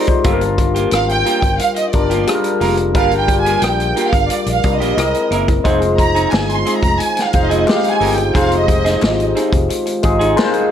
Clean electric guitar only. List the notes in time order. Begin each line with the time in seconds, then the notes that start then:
0.08 muted clean electric guitar stroke
0.24 A#3 F4 G4
0.41 muted clean electric guitar stroke
0.58 muted clean electric guitar stroke
0.75 A#3 F4 G4
0.92 muted clean electric guitar stroke
1.25 A#3 F4 G4
1.42 muted clean electric guitar stroke
1.60 muted clean electric guitar stroke
1.77 muted clean electric guitar stroke
2.10 A#3 F4 G4
2.28 muted clean electric guitar stroke
2.60 A#3 F4 A#4
2.78 muted clean electric guitar stroke
2.95 A#3 F4 G4
3.12 muted clean electric guitar stroke
3.29 muted clean electric guitar stroke
3.45 A#3 F4 G4
3.62 muted clean electric guitar stroke
3.96 A#3 F4 G4
4.30 muted clean electric guitar stroke
4.47 muted clean electric guitar stroke
4.80 A#3 F4 G4
4.97 muted clean electric guitar stroke
5.31 A#3 E4 A#4
5.48 muted clean electric guitar stroke
5.64 C4 D#4 G#4
5.81 muted clean electric guitar stroke
5.98 muted clean electric guitar stroke
6.15 C4 D#4 G#4
6.32 muted clean electric guitar stroke
6.65 C4 D#4 G#4
6.82 muted clean electric guitar stroke
6.99 muted clean electric guitar stroke
7.16 muted clean electric guitar stroke
7.49 C4 D#4 G#4
7.66 muted clean electric guitar stroke
8.00 C4 D#4 A#4
8.18 muted clean electric guitar stroke
8.34 C4 D#4 G#4
8.51 muted clean electric guitar stroke
8.68 muted clean electric guitar stroke
8.85 C4 D#4 G#4
9.02 muted clean electric guitar stroke
9.35 C4 D#4 G#4
9.52 muted clean electric guitar stroke
9.69 muted clean electric guitar stroke
9.86 muted clean electric guitar stroke
10.19 C4 D#4 G#4
10.36 muted clean electric guitar stroke